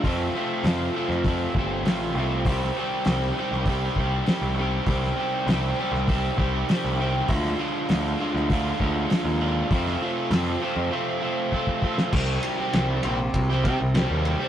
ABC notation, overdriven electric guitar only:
X:1
M:4/4
L:1/16
Q:1/4=99
K:Cm
V:1 name="Overdriven electric guitar" clef=bass
[F,,C,F,=A,CF]2 [F,,C,F,A,CF]2 [F,,C,F,A,CF]2 [F,,C,F,A,CF]2 [F,,C,F,A,CF]2 [F,,C,F,A,CF]2 [F,,C,F,A,CF]2 [F,,C,F,A,CF]2 | [C,E,G,CG]2 [C,E,G,CG]2 [C,E,G,CG]2 [C,E,G,CG]2 [C,E,G,CG]2 [C,E,G,CG]2 [C,E,G,CG]2 [C,E,G,CG]2 | [C,E,G,CG]2 [C,E,G,CG]2 [C,E,G,CG]2 [C,E,G,CG]2 [C,E,G,CG]2 [C,E,G,CG]2 [C,E,G,CG]2 [C,E,G,CG]2 | [D,A,DF]2 [D,A,DF]2 [D,A,DF]2 [D,A,DF]2 [D,A,DF]2 [D,A,DF]2 [D,A,DF]2 [D,A,DF]2 |
[F,,C,F,=A,CF]2 [F,,C,F,A,CF]2 [F,,C,F,A,CF]2 [F,,C,F,A,CF]2 [F,,C,F,A,CF]2 [F,,C,F,A,CF]2 [F,,C,F,A,CF]2 [F,,C,F,A,CF]2 | [C,E,G,CG]3 [G,CG] [C,E,G,CG]2 [E,G,CG]3 [G,CG] [E,G,CG]2 [C,E,G,CG]3 [G,CG] |]